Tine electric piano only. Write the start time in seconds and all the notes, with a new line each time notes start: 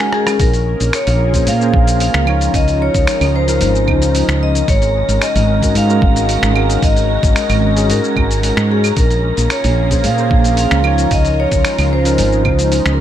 Already playing: G#3 C#4 F#4 A#4
1.33 A#3 C#4 G#4 C5
1.59 A#3 C#4 G#4
1.63 C5
2.25 F3 C#4 D#4
2.30 C#5
3.47 F3 C#4 D#4 A#4
3.85 F3 C#4 D#4
3.90 C5
5.61 G#3 C#4 F#4 A#4
5.87 G#3 C#4 F#4
5.91 A#4
6.53 G#3 C#4 F#4
6.58 A#4
7.76 G#3 C#4 F#4 G#4
8.15 G#3 C#4 F#4 A#4
8.42 G#3 C#4 F#4 A#4
9.90 A#3 C#4 G#4 C5
10.16 A#3 C#4 G#4
10.20 C5
10.82 F3 C#4 D#4
10.87 C#5
12.04 F3 C#4 D#4 A#4
12.43 F3 C#4 D#4
12.47 C5